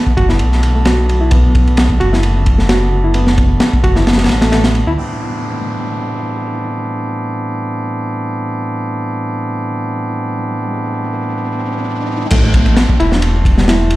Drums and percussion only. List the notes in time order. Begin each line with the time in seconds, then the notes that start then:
0.07 kick
0.17 kick, ride
0.29 snare
0.39 ride
0.52 snare
0.63 ride
0.85 snare, ride
1.09 ride
1.31 kick, ride
1.55 kick, ride
1.67 ride
1.77 snare, ride
1.90 kick
2.01 ride
2.13 snare
2.23 ride
2.46 kick, ride
2.59 snare
2.69 snare, ride
3.14 ride
3.27 snare
3.38 kick, ride
3.60 snare, ride
3.73 kick
3.84 kick, ride
3.96 snare
4.07 snare, ride
4.13 snare, ride
4.18 snare, ride
4.24 snare, ride
4.29 snare, ride
4.42 snare, ride
4.52 snare, ride
4.64 snare, ride
4.75 ride
12.30 kick, crash, ride
12.54 kick, ride
12.66 ride
12.77 snare, ride
12.89 kick
13.00 ride
13.12 snare
13.22 ride
13.45 kick, ride
13.58 snare
13.68 snare, ride
13.90 ride